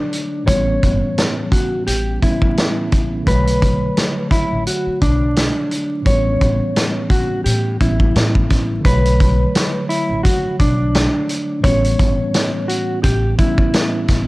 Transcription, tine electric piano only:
0.00 0.41 D3 medium
0.00 0.43 F#3 medium
0.00 0.44 A3 medium
0.00 0.45 C#5 medium
0.44 2.16 A2 medium
0.44 2.17 E3 medium
0.44 2.18 G3 medium
0.49 2.19 B3 medium
0.49 2.20 C#4 medium
2.21 3.26 A2 soft
2.21 3.27 E3 soft
2.21 3.27 G3 soft
2.21 3.28 B3 soft
2.21 3.28 C#4 medium
3.22 6.00 D3 medium
3.22 6.01 F#3 medium
3.27 6.02 A3 medium
3.27 6.03 C#5 medium
6.02 7.74 A2 medium
6.02 7.75 E3 medium
6.02 7.76 G3 medium
6.07 7.77 B3 medium
6.07 7.78 C#4 medium
7.79 8.84 A2 soft
7.79 8.85 E3 soft
7.79 8.85 G3 soft
7.79 8.85 B3 soft
7.79 8.86 C#4 medium
8.81 11.58 D3 medium
8.81 11.59 F#3 medium
8.85 11.60 A3 medium
8.85 11.61 C#5 medium
11.60 13.33 A2 medium
11.60 13.34 E3 medium
11.60 13.35 G3 medium
11.65 13.35 B3 medium
11.65 13.36 C#4 medium
13.37 14.27 A2 soft
13.37 14.27 E3 soft
13.37 14.27 G3 soft
13.37 14.27 B3 soft
13.37 14.27 C#4 medium

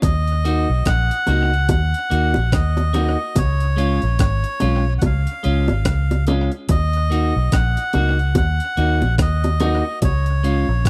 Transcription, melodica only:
0.03 0.89 D#5 loud
0.88 1.69 F#5 loud
1.70 2.56 F#5 loud
2.53 3.39 D#5 loud
3.38 4.19 C#5 loud
4.21 4.94 C#5 loud
4.98 5.03 F#5 medium
5.06 6.25 F5 medium
6.71 7.56 D#5 loud
7.53 8.35 F#5 loud
8.37 9.15 F#5 loud
9.22 9.99 D#5 loud
10.05 10.89 C#5 medium

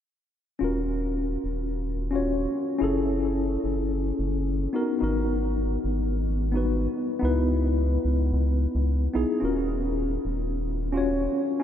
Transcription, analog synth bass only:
0.61 1.37 D#1 medium
1.44 2.47 D#1 medium
2.81 3.57 F#1 medium
3.64 4.12 F#1 medium
4.19 4.67 F#1 medium
5.02 5.78 G#1 loud
5.84 6.88 G#1 medium
7.22 7.98 C#2 medium
8.05 8.32 C#2 medium
8.33 8.67 C#2 medium
8.75 9.08 C#2 medium
9.15 9.25 B1 medium
9.42 10.18 D#1 medium
10.25 11.28 D#1 medium

